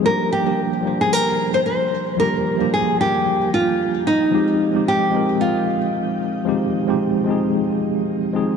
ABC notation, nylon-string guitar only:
X:1
M:4/4
L:1/16
Q:"Swing 16ths" 1/4=112
K:Fdor
V:1 name="Nylon-string guitar"
B2 G4- G A B3 c c4 | B4 A2 G4 F4 E2- | E4 G4 F8- | F12 z4 |]